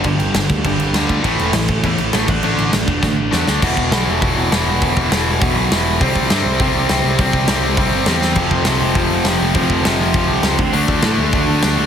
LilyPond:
<<
  \new Staff \with { instrumentName = "Overdriven electric guitar" } { \clef bass \time 4/4 \key d \major \tempo 4 = 202 <g, d g>2 <g, d g>2 | <a, e a>2 <a, e a>4. <d a d'>8~ | <d a d'>4. <d a d'>2 r8 | \key e \minor r1 |
r1 | r1 | r1 | <f, c f>4. <f, c f>2~ <f, c f>8 |
<f, c f>4. <f, c f>2 <d a d'>8~ | <d a d'>4 <d a d'>2~ <d a d'>8 <d a d'>8 | }
  \new Staff \with { instrumentName = "Distorted electric guitar" } { \clef bass \time 4/4 \key d \major <g, d>8 r8 <g, d>8 r8 <g, d>8 r8 <g, d g>4 | <a, e a>4 <a, e>8 r8 <a, e>8 r8 <a, e a>8 r8 | <d a d'>4 <d a>8 r8 <d a>8 r8 <d a d'>4 | \key e \minor <e, b, e>4 <e, b, e>4 <e, b, e>4 <e, b, e>4 |
<e, b, e>4 <e, b, e>4 <e, b, e>4 <e, b, e>4 | <c g c'>4 <c g c'>4 <c g c'>4 <c g c'>4 | <c g c'>4 <c g c'>4 <c g c'>4 <c g c'>4 | <f, c f>4 <f, c f>4 <f, c f>4 <f, c f>4 |
<f, c f>4 <f, c f>4 <f, c f>4 <f, c f>8 r8 | <d a d'>4 <d a d'>4 <d a d'>4 <d a d'>4 | }
  \new Staff \with { instrumentName = "Distorted electric guitar" } { \clef bass \time 4/4 \key d \major <g, d>8 r8 <g, d>8 r8 <g, d>8 r8 <g, d g>4 | <a, e a>4 <a, e>8 r8 <a, e>8 r8 <a, e a>8 r8 | <d a d'>4 <d a>8 r8 <d a>8 r8 <d a d'>4 | \key e \minor <e, b, e>4 <e, b, e>4 <e, b, e>4 <e, b, e>4 |
<e, b, e>4 <e, b, e>4 <e, b, e>4 <e, b, e>4 | <c g c'>4 <c g c'>4 <c g c'>4 <c g c'>4 | <c g c'>4 <c g c'>4 <c g c'>4 <c g c'>4 | <f, c f>4 <f, c f>4 <f, c f>4 <f, c f>4 |
<f, c f>4 <f, c f>4 <f, c f>4 <f, c f>8 r8 | <d a d'>4 <d a d'>4 <d a d'>4 <d a d'>4 | }
  \new Staff \with { instrumentName = "Picked electric bass" } { \clef bass \time 4/4 \key d \major g,,8 g,,8 g,,8 d,8 g,,8 g,,8 d,8 d,8 | a,,8 e,,8 a,,8 a,,8 e,8 a,,8 a,,8 a,,8 | a,,8 a,,8 a,,8 e,,8 a,,8 a,,8 e,8 d,8 | \key e \minor e,,8 e,,8 b,,8 e,,8 e,,8 e,,8 e,,8 e,,8 |
e,,8 e,,8 e,,4 e,,8 b,,8 e,,4 | c,8 c,8 g,8 c,8 c,8 c,8 c,8 c,8 | c,8 c,8 c,4 c,8 g,,8 e,4 | f,,8 f,,8 c,8 f,,8 f,,8 f,,8 f,,8 f,,8 |
f,,8 f,,8 f,,4 f,,8 c,8 cis,8 d,8 | d,8 d,8 a,8 d,8 d,8 d,8 d,8 d,8 | }
  \new DrumStaff \with { instrumentName = "Drums" } \drummode { \time 4/4 <cymc bd>8 cymc8 <cymc sn>8 <cymc bd>8 <cymc bd>8 cymc8 <cymc sn>8 <cymc bd>8 | <cymc bd>8 cymc8 <cymc sn>8 <cymc bd>8 <cymc bd>8 cymc8 <cymc sn>8 <cymc bd>8 | cymc8 cymc8 <cymc sn>8 <cymc bd>8 <bd sn>4 sn8 sn8 | <cymc bd>8 bd8 <hho sn>4 <hho bd>4 <hho sn>4 |
<hho bd>8 bd8 <hho sn>4 <hho bd>4 <hho sn>4 | <hho bd>8 bd8 <hho sn>4 <hho bd>4 <hho sn>4 | <hho bd>8 bd8 <hho sn>4 <hho bd>4 <hho sn>8 sn8 | <cymc bd>8 bd8 <hho sn>4 <hho bd>4 <hho sn>4 |
<hho bd>8 bd8 <hho sn>4 <hho bd>4 <hho sn>8 bd8 | hho8 bd8 sn4 <hho bd>4 <hho sn>4 | }
>>